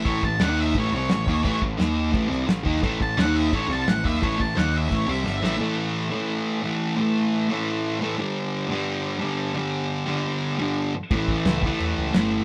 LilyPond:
<<
  \new Staff \with { instrumentName = "Lead electric guitar" } { \time 4/4 \key g \lydian \tempo 4 = 174 cis''8 a''8 fis''8 e''8 cis''8 cis''4.~ | cis''8 r2. r8 | r8 a''8 fis''8 e''8 cis''8 a''8 fis''8 e''8 | cis''8 a''8 fis''8 e''8 cis''8 e''4. |
r1 | r1 | r1 | r1 |
r1 | }
  \new Staff \with { instrumentName = "Distorted electric guitar" } { \clef bass \time 4/4 \key g \lydian <a, e a>8 <a, e>8 <dis ais dis'>4 <a, e a>8 <c g c'>8 <a, e>8 <dis bes dis'>8 | <a, e a>8 <a, e>8 <dis ais dis'>4 <a, e a>8 <c g c'>8 <a, e>8 <dis bes dis'>8 | <a, e a>8 <a, e>8 <dis ais dis'>4 <a, e a>8 <c g c'>8 <a, e>8 <dis bes dis'>8 | <a, e a>8 <a, e>8 <dis ais dis'>4 <a, e a>8 <c g c'>8 <g, d g>8 <a, e a>8 |
<a, e a>4. <a, e a>4. <a, e a>4 | <a, e a>4. <a, e a>4. <a, e a>8 <g, d g>8~ | <g, d g>4 <g, d g>4. <g, d g>4 <g, d g>8~ | <g, d g>4 <g, d g>4. <g, d g>4 r8 |
<a, e a>4. <a, e a>4. <a, e a>4 | }
  \new Staff \with { instrumentName = "Picked electric bass" } { \clef bass \time 4/4 \key g \lydian a,,8 a,,8 dis,4 a,,8 c,8 a,,8 dis,8 | a,,8 a,,8 dis,4 a,,8 c,8 a,,8 dis,8 | a,,8 a,,8 dis,4 a,,8 c,8 a,,8 dis,8 | a,,8 a,,8 dis,4 a,,8 c,8 g,,8 a,,8 |
r1 | r1 | r1 | r1 |
a,,4 cis,4 e,8 cis,8 g,,4 | }
  \new DrumStaff \with { instrumentName = "Drums" } \drummode { \time 4/4 <cymc bd>8 bd8 <cymc sn>4 <cymc bd>4 <cymc sn>8 bd8 | <cymc bd>8 bd8 <cymc sn>4 <cymc bd>8 sn8 <cymc sn>8 bd16 sn16 | <cymc bd>8 bd8 <cymc sn>4 <cymc bd>8 sn8 <cymc sn>8 bd16 sn16 | <cymc bd>8 bd8 <cymc sn>4 <cymc bd>4 sn8 sn8 |
r4 r4 r4 r4 | r4 r4 r4 r4 | r4 r4 r4 r4 | r4 r4 r4 r4 |
<cymc bd>8 bd8 <cymc sn>8 bd8 cymc4 <cymc sn>4 | }
>>